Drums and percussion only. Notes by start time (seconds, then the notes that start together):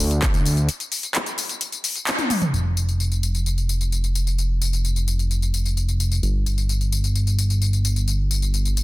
0.00 tambourine
0.11 closed hi-hat, tambourine
0.22 kick, clap, closed hi-hat, tambourine
0.34 closed hi-hat, tambourine
0.46 open hi-hat, tambourine
0.57 closed hi-hat, tambourine
0.69 closed hi-hat, tambourine
0.80 closed hi-hat, tambourine
0.92 open hi-hat, tambourine
1.03 closed hi-hat, tambourine
1.15 clap, closed hi-hat, tambourine
1.26 closed hi-hat, tambourine
1.38 open hi-hat, tambourine
1.49 closed hi-hat, tambourine
1.61 closed hi-hat, tambourine
1.72 closed hi-hat, tambourine
1.84 open hi-hat, tambourine
1.96 closed hi-hat, tambourine
2.07 clap, closed hi-hat, tambourine
2.19 closed hi-hat, high tom, tambourine
2.30 open hi-hat, mid tom, tambourine
2.42 closed hi-hat, mid tom, tambourine
2.54 tambourine
2.77 tambourine
2.89 tambourine
3.00 tambourine
3.12 tambourine
3.23 tambourine
3.35 tambourine
3.46 tambourine
3.58 tambourine
3.69 tambourine
3.81 tambourine
3.92 tambourine
4.04 tambourine
4.15 tambourine
4.27 tambourine
4.38 tambourine
4.62 tambourine
4.73 tambourine
4.85 tambourine
4.96 tambourine
5.08 tambourine
5.19 tambourine
5.31 tambourine
5.42 tambourine
5.54 tambourine
5.65 tambourine
5.77 tambourine
5.89 tambourine
6.00 tambourine
6.12 tambourine
6.23 tambourine
6.46 tambourine
6.58 tambourine
6.69 tambourine
6.81 tambourine
6.92 tambourine
7.04 tambourine
7.15 tambourine
7.27 tambourine
7.39 tambourine
7.50 tambourine
7.62 tambourine
7.73 tambourine
7.85 tambourine
7.96 tambourine
8.08 tambourine
8.31 tambourine
8.42 tambourine
8.54 tambourine
8.65 tambourine
8.77 tambourine